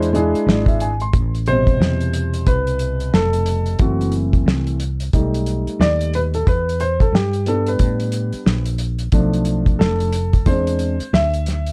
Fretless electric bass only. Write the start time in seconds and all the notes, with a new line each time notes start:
Already playing: E2
0.34 muted fretless electric bass stroke
0.46 G#1
1.13 A1
1.80 E2
2.47 C2
3.13 F1
3.80 F#1
4.46 C2
5.13 B1
5.67 muted fretless electric bass stroke
5.80 D#2
6.47 E2
7.12 G2
7.79 A2
8.34 muted fretless electric bass stroke
8.46 A#1
9.12 B1
9.80 F1
10.46 E2
11.00 muted fretless electric bass stroke
11.13 D2